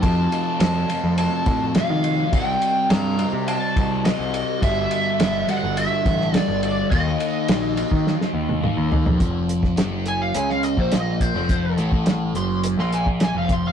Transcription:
0.02 F2 C3 F3 A5, kick, ride
0.32 ride
0.60 F2 A5, snare, ride
0.88 F2 C3 F3, ride
1.04 F2
1.18 A5, ride
1.46 A2, kick, ride
1.75 F2 C3 F3 F5, snare, ride
1.90 D#3
2.04 ride
2.32 C2 C3 G3 C4 G5, kick, ride
2.62 ride
2.90 G2 A#5, snare, ride
3.17 C3 G3 C4, ride
3.33 C3
3.48 A5, ride
3.76 C2, kick, ride
4.04 C3 G3 C4 D#5, snare, ride
4.19 C2
4.34 ride
4.61 G1 G2 D3 G3 E5, kick, ride
4.91 ride
5.20 G1, snare, ride
5.47 G2 D3 G3 F#5, snare, ride
5.63 G1
5.77 E5, ride
6.05 A1, kick, ride
6.21 snare
6.33 G2 D3 D5, snare, ride
6.37 G3
6.48 G1
6.62 D5, ride
6.90 D#2 D#3 A#3 D#4 D#5, kick, ride
7.20 ride
7.48 A#1, snare, ride
7.76 D#3 A#3 D#4, ride
7.91 D#3, kick
8.07 snare
8.21 snare
8.34 D#2
8.49 high tom
8.61 D#3 A#3 D#4, mid tom
8.77 D#2
8.92 D#2, floor tom
9.06 F2, floor tom
9.20 F1 F2 F3, kick, closed hi-hat
9.49 closed hi-hat
9.63 kick, snare
9.77 F#1 F#2 F#3, snare, closed hi-hat
10.06 G#5, closed hi-hat
10.22 F5
10.35 C#2 C#3 C#4 G#5, closed hi-hat
10.50 F5, snare
10.63 D#5, closed hi-hat
10.77 A#1 A#2 A#3 C5, kick
10.92 D#5, snare, closed hi-hat
11.21 C5, kick, closed hi-hat
11.34 F1 F2 F3
11.49 kick, closed hi-hat
11.77 A1 A2 A3, closed hi-hat
11.92 kick
12.06 snare, closed hi-hat
12.34 F#1 F#2 F#3 C6, closed hi-hat
12.64 closed hi-hat
12.77 A#1 A#2 A#3 C6, snare
12.93 G#5, closed hi-hat
13.06 kick
13.20 G#5, snare, closed hi-hat
13.34 F1 F2 F3 F5
13.49 C6, kick, closed hi-hat
13.67 F5

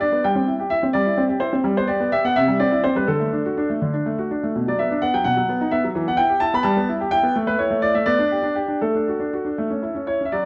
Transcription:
0.01 D4 D5
0.12 B3
0.24 G3 G5
0.36 C4
0.47 E4
0.60 G4
0.70 E4 E5
0.83 C4
0.93 G3 D5
1.06 E4
1.18 C4
1.29 G4
1.40 E4 C5
1.53 C4
1.64 G3
1.77 B3 C5
1.87 G4 D5
2.00 B3
2.12 G4 E5
2.25 B3 F#5
2.36 C3 E5
2.48 G3
2.60 C4 D5
2.71 E4
2.84 C4 C5
2.96 G3 B4
3.07 D3 A4
3.20 A3
3.33 D4
3.45 F#4
3.58 D4
3.70 A3
3.82 D3
3.94 D4
4.06 A3
4.18 F#4
4.31 D4
4.43 A3
4.55 B2
4.67 F#3 D5
4.79 B3 E5
4.91 D4
5.02 B3 F#5
5.13 F#3 G5
5.24 B2 F#5
5.36 F#3
5.49 B3
5.61 D#4
5.71 B3 E5
5.84 F#3
5.95 E3
6.07 B3 F#5
6.17 E4 G5
6.29 G4
6.40 E4 A5
6.53 B3 B5
6.63 G3 A5
6.76 B3
6.89 E4
7.01 G4
7.11 E4 G5
7.23 B3
7.36 A3
7.47 A3 B4
7.59 E4 C#5
7.70 A3
7.82 E4 D5
7.94 A3 E5
8.06 B3 D5
8.19 D4
8.31 G4
8.43 D4
8.55 G4
8.68 D4
8.81 A3 A4
8.95 D4
9.08 F#4
9.19 D4
9.33 F#4
9.45 D4
9.58 A3
9.70 C#4
9.82 E4
9.95 C#4
10.07 E4 C#5
10.21 C#4
10.25 E5
10.32 F#3 F#4 D5

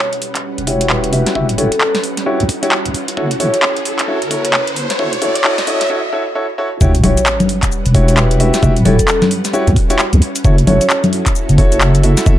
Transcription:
Already playing: G3 C#4 B4 F#5, riser
0.13 closed hi-hat
0.22 open hi-hat
0.35 kick, clap, closed hi-hat
0.58 E1, closed hi-hat
0.67 E4 F#4 G4 C#5, kick, open hi-hat
0.81 closed hi-hat
0.90 B4, clap
1.03 B4, closed hi-hat
1.12 E4 F#4 G4 E5, open hi-hat
1.26 snare, closed hi-hat
1.35 E1 E4 F#4 G4 E5, kick
1.49 closed hi-hat
1.58 E1 E4 F#4 G4 A4 C#5, open hi-hat
1.72 kick, closed hi-hat
1.81 clap
1.95 snare, closed hi-hat
2.04 open hi-hat
2.17 snare, closed hi-hat
2.26 E4 F#4 G4 C#5
2.40 C#2, closed hi-hat
2.49 kick, open hi-hat
2.63 E4 F#4 G4 C#5, closed hi-hat
2.72 clap
2.86 C#2, closed hi-hat
2.94 E4 A4, open hi-hat
3.08 closed hi-hat
3.17 F#1 E4 F#4 A4 C#5, kick
3.31 closed hi-hat
3.40 F#1 E4 F#4 A4 C#5, open hi-hat
3.54 C#5, closed hi-hat
3.63 clap
3.77 closed hi-hat
3.85 open hi-hat
3.99 kick, clap, closed hi-hat
4.08 E4 F#4 A4 C#5
4.22 F#1, closed hi-hat
4.31 E4 F#4 A4 C#5, kick, open hi-hat
4.45 C#5, closed hi-hat
4.54 clap
4.67 closed hi-hat
4.76 open hi-hat
4.90 snare, closed hi-hat
4.99 F#1 E4 F#4 A4 C#5, kick
5.13 closed hi-hat
5.22 F#1 E4 F#4 A4 C#5, open hi-hat
5.35 C#5, kick, closed hi-hat
5.44 E4 F#4 A4 C#5, clap
5.58 snare, closed hi-hat
5.67 E4 F#4 A4 C#5, open hi-hat
5.81 C#5, snare, closed hi-hat
5.90 E4 F#4 A4 C#5
6.13 E4 F#4 A4 C#5
6.35 E4 F#4 A4 C#5
6.58 E4 F#4 A4 C#5
6.81 E1 G3 C#4 E4 F#4 G4 B4 C#5 F#5, kick, sub drop, shaker
6.95 closed hi-hat, shaker
7.04 E1 E4 F#4 G4 C#5, open hi-hat, high conga
7.17 C#5, closed hi-hat, shaker
7.26 clap, shaker
7.40 closed hi-hat, high conga, shaker
7.49 open hi-hat
7.63 kick, clap, closed hi-hat, shaker
7.72 shaker
7.86 E1, closed hi-hat, shaker
7.94 E4 F#4 G4 C#5, kick, open hi-hat
8.08 closed hi-hat, shaker
8.17 B4, clap, shaker
8.31 B4, closed hi-hat, shaker
8.40 E4 F#4 G4 E5, open hi-hat
8.54 snare, closed hi-hat, shaker
8.63 E1 E4 F#4 G4 E5, kick, shaker
8.76 closed hi-hat, shaker
8.85 E1 E4 F#4 G4 A4 C#5, open hi-hat, high conga
8.99 kick, closed hi-hat, shaker
9.08 clap, shaker
9.22 snare, closed hi-hat, high conga, shaker
9.31 open hi-hat
9.45 snare, closed hi-hat, shaker
9.53 E4 F#4 G4 C#5, shaker
9.67 C#2, closed hi-hat, shaker
9.76 kick, open hi-hat
9.90 E4 F#4 G4 C#5, closed hi-hat, shaker
9.99 clap, shaker
10.13 C#2, closed hi-hat, shaker
10.22 E4 F#4 A4, open hi-hat
10.36 closed hi-hat, shaker
10.44 F#1 E4 F#4 A4 C#5, kick, shaker
10.58 closed hi-hat, shaker
10.67 F#1 E4 F#4 A4 C#5, open hi-hat, high conga
10.81 C#5, closed hi-hat, shaker
10.90 clap, shaker
11.04 closed hi-hat, high conga, shaker
11.13 open hi-hat
11.26 kick, clap, closed hi-hat, shaker
11.35 shaker
11.49 F#1, closed hi-hat, shaker
11.58 E4 F#4 A4 C#5, kick, open hi-hat
11.72 closed hi-hat, shaker
11.81 clap, shaker
11.95 closed hi-hat, shaker
12.03 E4 F#4 A4 E5, open hi-hat
12.17 snare, closed hi-hat, shaker
12.26 F#1 E4 F#4 A4 E5, kick, shaker

